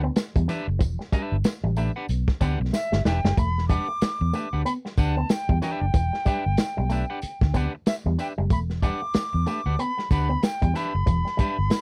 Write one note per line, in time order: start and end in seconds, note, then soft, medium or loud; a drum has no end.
0.03 0.11 B3 medium
0.03 muted clean electric guitar stroke medium
0.16 muted clean electric guitar stroke soft
0.16 snare loud
0.16 closed hi-hat medium
0.16 tambourine loud
0.36 0.46 E2 loud
0.36 0.43 G3 medium
0.36 muted clean electric guitar stroke medium
0.36 kick loud
0.36 closed hi-hat medium
0.48 0.59 E3 medium
0.48 0.66 D4 medium
0.48 0.66 G4 medium
0.48 0.66 B4 medium
0.48 0.66 E5 loud
0.48 snare soft
0.48 closed hi-hat medium
0.48 tambourine medium
0.68 0.81 F#1 loud
0.79 0.95 E1 loud
0.79 0.91 E3 medium
0.79 kick loud
0.79 closed hi-hat medium
0.79 tambourine soft
0.99 muted clean electric guitar stroke soft
0.99 snare soft
1.12 1.23 G3 medium
1.12 1.35 D4 medium
1.12 1.35 G4 medium
1.12 1.35 B4 loud
1.12 1.36 E5 medium
1.12 kick medium
1.12 closed hi-hat medium
1.12 tambourine soft
1.32 1.42 G1 medium
1.44 muted clean electric guitar stroke soft
1.44 muted fingered electric bass stroke soft
1.44 snare loud
1.44 closed hi-hat medium
1.44 tambourine medium
1.64 1.88 A1 loud
1.64 1.71 G3 medium
1.64 muted clean electric guitar stroke soft
1.76 1.88 A3 medium
1.76 1.90 D4 medium
1.76 1.90 G4 medium
1.76 1.91 B4 medium
1.76 1.91 E5 medium
1.76 closed hi-hat medium
1.76 tambourine medium
1.96 2.06 D4 medium
1.96 2.05 G4 medium
1.96 2.05 B4 medium
1.96 2.05 F#5 medium
2.09 2.24 B1 medium
2.09 closed hi-hat medium
2.09 tambourine soft
2.28 muted clean electric guitar stroke soft
2.28 kick loud
2.28 snare soft
2.41 2.56 D2 medium
2.41 2.52 B3 medium
2.41 2.58 D4 medium
2.41 2.58 G4 loud
2.41 2.58 B4 loud
2.41 2.59 F#5 loud
2.41 kick medium
2.41 closed hi-hat medium
2.41 tambourine medium
2.60 2.70 B1 medium
2.60 muted clean electric guitar stroke soft
2.73 3.03 E5 loud
2.73 muted clean electric guitar stroke soft
2.73 snare medium
2.73 tambourine loud
2.92 3.02 G1 loud
2.92 3.00 G3 medium
2.92 snare medium
3.05 3.20 E1 medium
3.05 3.19 D4 medium
3.05 3.19 G4 medium
3.05 3.19 B4 medium
3.05 3.19 E5 medium
3.05 3.39 G5 medium
3.05 muted clean electric guitar stroke soft
3.05 snare medium
3.05 tambourine medium
3.24 3.34 F#1 medium
3.24 3.32 G3 medium
3.24 muted clean electric guitar stroke soft
3.24 snare medium
3.37 3.77 E1 medium
3.37 3.49 A3 medium
3.37 3.67 B5 loud
3.37 kick loud
3.37 closed hi-hat medium
3.37 tambourine soft
3.58 snare soft
3.68 3.80 G3 medium
3.68 3.86 D4 medium
3.68 3.87 G4 medium
3.68 3.87 B4 medium
3.68 3.87 F#5 medium
3.68 4.61 D6 loud
3.68 kick medium
3.68 closed hi-hat medium
3.68 tambourine soft
3.88 muted clean electric guitar stroke medium
4.01 muted clean electric guitar stroke soft
4.01 muted fingered electric bass stroke soft
4.01 snare loud
4.01 closed hi-hat medium
4.01 tambourine medium
4.21 4.31 E2 loud
4.21 muted clean electric guitar stroke medium
4.33 4.44 A3 medium
4.33 4.47 D4 medium
4.33 4.47 G4 medium
4.33 4.48 B4 medium
4.33 4.48 E5 medium
4.33 closed hi-hat medium
4.33 tambourine medium
4.53 4.63 D2 medium
4.53 4.63 D4 medium
4.53 4.62 G4 medium
4.53 4.62 B4 medium
4.53 4.62 F#5 medium
4.65 4.76 B3 medium
4.65 4.72 B5 loud
4.65 closed hi-hat medium
4.65 tambourine soft
4.86 muted clean electric guitar stroke soft
4.86 snare soft
4.97 5.22 D2 medium
4.97 5.15 D4 loud
4.97 5.15 G4 medium
4.97 5.15 B4 medium
4.97 5.15 F#5 loud
4.97 5.32 A5 medium
4.97 kick medium
4.97 closed hi-hat medium
4.97 tambourine medium
5.17 5.24 B3 medium
5.29 5.61 G5 loud
5.29 muted clean electric guitar stroke soft
5.29 snare loud
5.29 closed hi-hat loud
5.29 tambourine loud
5.49 5.59 E2 loud
5.49 5.56 G3 medium
5.49 muted clean electric guitar stroke medium
5.49 kick loud
5.61 5.73 E3 medium
5.61 5.84 D4 medium
5.61 5.81 G4 medium
5.61 5.81 B4 medium
5.61 5.80 E5 medium
5.61 7.56 G5 loud
5.61 snare soft
5.61 closed hi-hat medium
5.61 tambourine medium
5.81 5.91 F#1 medium
5.81 muted clean electric guitar stroke medium
5.94 6.09 E1 loud
5.94 6.05 E3 medium
5.94 kick loud
5.94 closed hi-hat medium
5.94 tambourine soft
6.13 muted clean electric guitar stroke soft
6.13 snare soft
6.25 6.37 G3 medium
6.25 6.43 D4 medium
6.25 6.43 G4 medium
6.25 6.44 B4 medium
6.25 6.44 E5 medium
6.25 kick medium
6.25 closed hi-hat medium
6.25 tambourine soft
6.46 6.56 G1 medium
6.57 muted clean electric guitar stroke soft
6.57 muted fingered electric bass stroke soft
6.57 snare loud
6.57 closed hi-hat loud
6.57 tambourine medium
6.77 7.03 B1 medium
6.77 6.84 G3 medium
6.77 muted clean electric guitar stroke soft
6.90 7.01 A3 medium
6.90 7.04 D4 medium
6.90 7.04 G4 medium
6.90 7.04 B4 medium
6.90 7.04 E5 medium
6.90 closed hi-hat medium
6.90 tambourine medium
7.10 7.19 D4 medium
7.10 7.19 G4 medium
7.10 7.19 B4 medium
7.10 7.18 F#5 medium
7.22 muted fingered electric bass stroke soft
7.22 closed hi-hat medium
7.22 tambourine soft
7.41 7.66 D2 medium
7.41 muted clean electric guitar stroke medium
7.41 kick loud
7.41 snare soft
7.54 7.65 B3 medium
7.54 7.72 D4 medium
7.54 7.72 G4 medium
7.54 7.72 B4 medium
7.54 7.72 F#5 medium
7.54 kick medium
7.54 closed hi-hat medium
7.54 tambourine medium
7.75 muted clean electric guitar stroke soft
7.86 7.94 E5 loud
7.86 muted clean electric guitar stroke soft
7.86 snare loud
7.86 closed hi-hat medium
7.86 tambourine loud
8.06 8.15 E2 loud
8.06 8.13 G3 medium
8.19 8.32 D4 medium
8.19 8.32 G4 medium
8.19 8.32 B4 medium
8.19 8.32 E5 medium
8.19 8.27 G5 medium
8.19 muted clean electric guitar stroke medium
8.19 closed hi-hat medium
8.19 tambourine medium
8.38 8.50 F#1 medium
8.38 8.45 G3 medium
8.38 muted clean electric guitar stroke soft
8.50 8.90 E1 loud
8.50 8.62 A3 medium
8.50 8.59 B5 medium
8.50 kick loud
8.50 closed hi-hat medium
8.50 tambourine soft
8.70 snare soft
8.82 8.94 G3 medium
8.82 8.99 D4 medium
8.82 9.00 G4 medium
8.82 9.00 B4 medium
8.82 9.00 F#5 medium
8.82 9.81 D6 loud
8.82 kick medium
8.82 closed hi-hat medium
8.82 tambourine soft
9.02 muted clean electric guitar stroke soft
9.14 muted clean electric guitar stroke soft
9.14 muted fingered electric bass stroke soft
9.14 snare loud
9.14 closed hi-hat medium
9.14 tambourine loud
9.33 9.44 E2 medium
9.33 muted clean electric guitar stroke soft
9.46 9.58 A3 medium
9.46 9.60 D4 medium
9.46 9.60 G4 medium
9.46 9.60 B4 medium
9.46 9.60 E5 medium
9.46 closed hi-hat medium
9.46 tambourine medium
9.66 9.76 D2 medium
9.66 9.75 D4 medium
9.66 9.75 G4 medium
9.66 9.75 B4 medium
9.66 9.75 F#5 medium
9.79 9.90 B3 medium
9.79 10.11 B5 loud
9.79 closed hi-hat medium
9.98 muted clean electric guitar stroke medium
9.98 snare soft
10.11 10.35 D2 medium
10.11 10.28 D4 medium
10.11 10.28 G4 medium
10.11 10.28 B4 medium
10.11 10.28 F#5 medium
10.11 10.45 B5 medium
10.11 kick medium
10.11 closed hi-hat medium
10.11 tambourine medium
10.29 10.37 B3 medium
10.43 10.78 G5 loud
10.43 muted clean electric guitar stroke soft
10.43 snare loud
10.43 closed hi-hat medium
10.43 tambourine loud
10.62 10.72 E2 loud
10.62 10.69 G3 medium
10.62 muted clean electric guitar stroke medium
10.62 kick medium
10.62 closed hi-hat medium
10.74 10.85 E3 medium
10.74 10.92 D4 medium
10.74 10.92 G4 medium
10.74 10.92 B4 loud
10.74 10.92 E5 loud
10.74 11.81 B5 medium
10.74 snare soft
10.74 closed hi-hat medium
10.74 tambourine medium
10.95 11.04 F#1 medium
11.06 11.22 E1 loud
11.06 11.17 E3 medium
11.06 kick loud
11.06 closed hi-hat medium
11.06 tambourine soft
11.25 muted clean electric guitar stroke soft
11.25 snare soft
11.37 11.49 G3 medium
11.37 11.56 D4 medium
11.37 11.56 G4 medium
11.37 11.56 B4 medium
11.37 11.57 E5 medium
11.37 kick medium
11.37 closed hi-hat medium
11.37 tambourine soft
11.59 11.68 G1 medium
11.70 muted clean electric guitar stroke soft
11.70 snare loud
11.70 closed hi-hat loud
11.70 tambourine medium